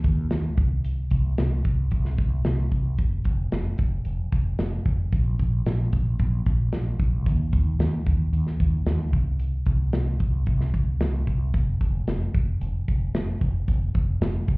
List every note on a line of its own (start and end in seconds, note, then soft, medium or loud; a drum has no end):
0.04 0.26 D#2 medium
0.04 kick medium
0.04 closed hi-hat medium
0.31 0.58 D#2 medium
0.31 snare medium
0.31 closed hi-hat medium
0.57 1.02 C2 medium
0.57 kick medium
0.57 closed hi-hat medium
0.85 closed hi-hat medium
1.11 1.33 C2 medium
1.11 kick medium
1.11 closed hi-hat medium
1.38 1.60 C2 medium
1.38 snare loud
1.38 closed hi-hat medium
1.65 1.87 C2 medium
1.65 kick medium
1.65 closed hi-hat medium
1.91 2.14 C2 medium
1.91 kick medium
1.91 closed hi-hat medium
2.05 snare soft
2.18 2.40 C2 medium
2.18 kick medium
2.18 closed hi-hat medium
2.44 2.67 C2 medium
2.44 snare medium
2.44 closed hi-hat medium
2.71 2.94 C2 medium
2.71 kick medium
2.71 closed hi-hat medium
2.98 3.20 F1 medium
2.98 kick loud
2.98 closed hi-hat medium
3.24 3.47 F1 medium
3.24 kick medium
3.24 closed hi-hat medium
3.52 3.74 F1 medium
3.52 snare medium
3.52 closed hi-hat medium
3.78 4.01 F1 medium
3.78 kick medium
3.78 closed hi-hat medium
4.05 4.27 F1 medium
4.05 closed hi-hat medium
4.32 4.54 F1 medium
4.32 kick medium
4.32 closed hi-hat medium
4.59 4.81 F1 medium
4.59 snare medium
4.59 closed hi-hat medium
4.85 5.08 F1 medium
4.85 kick medium
4.85 closed hi-hat soft
5.12 5.34 A#1 medium
5.12 kick medium
5.12 closed hi-hat medium
5.39 5.61 A#1 medium
5.39 kick medium
5.39 closed hi-hat medium
5.66 5.88 A#1 medium
5.66 snare medium
5.66 closed hi-hat medium
5.93 6.15 A#1 medium
5.93 kick medium
5.93 closed hi-hat medium
6.19 6.42 A#1 medium
6.19 kick medium
6.19 closed hi-hat medium
6.46 6.68 A#1 medium
6.46 kick medium
6.46 closed hi-hat medium
6.73 6.95 A#1 medium
6.73 snare medium
6.73 closed hi-hat medium
6.99 7.26 A#1 medium
6.99 kick medium
6.99 closed hi-hat medium
7.26 7.48 D#2 medium
7.26 kick medium
7.26 closed hi-hat medium
7.53 7.75 D#2 medium
7.53 kick medium
7.53 closed hi-hat medium
7.79 8.01 D#2 medium
7.79 snare medium
7.79 closed hi-hat medium
8.06 8.29 D#2 medium
8.06 kick medium
8.06 closed hi-hat medium
8.33 8.55 D#2 medium
8.33 closed hi-hat medium
8.47 snare soft
8.60 8.82 D#2 medium
8.60 kick medium
8.60 closed hi-hat medium
8.86 9.13 D#2 medium
8.86 snare medium
8.86 closed hi-hat medium
9.13 9.57 C2 medium
9.13 kick medium
9.13 closed hi-hat soft
9.39 closed hi-hat medium
9.66 9.88 C2 medium
9.66 kick medium
9.66 closed hi-hat medium
9.93 10.15 C2 medium
9.93 snare medium
9.93 closed hi-hat medium
10.20 10.42 C2 medium
10.20 kick medium
10.20 closed hi-hat medium
10.46 10.69 C2 medium
10.46 kick medium
10.46 closed hi-hat medium
10.60 snare soft
10.74 10.96 C2 medium
10.74 kick medium
10.74 closed hi-hat medium
11.01 11.23 C2 medium
11.01 snare loud
11.01 closed hi-hat medium
11.27 11.49 C2 medium
11.27 kick medium
11.27 closed hi-hat medium
11.54 11.76 F1 loud
11.54 kick medium
11.54 closed hi-hat medium
11.81 12.03 F1 medium
11.81 kick medium
11.81 closed hi-hat medium
12.07 12.29 F1 medium
12.07 snare medium
12.07 closed hi-hat medium
12.34 12.56 F1 medium
12.34 kick loud
12.34 closed hi-hat medium
12.61 12.83 F1 loud
12.61 closed hi-hat medium
12.88 13.10 F1 medium
12.88 kick medium
12.88 closed hi-hat medium
13.14 13.36 F1 medium
13.14 snare medium
13.14 closed hi-hat medium
13.41 13.63 F1 medium
13.41 kick medium
13.41 closed hi-hat medium
13.68 13.90 F1 medium
13.68 kick medium
13.68 closed hi-hat medium
13.94 14.17 F1 medium
13.94 kick medium
13.94 closed hi-hat medium
14.21 14.43 F1 medium
14.21 snare loud
14.21 closed hi-hat medium
14.48 14.57 F1 medium
14.48 kick medium
14.48 closed hi-hat medium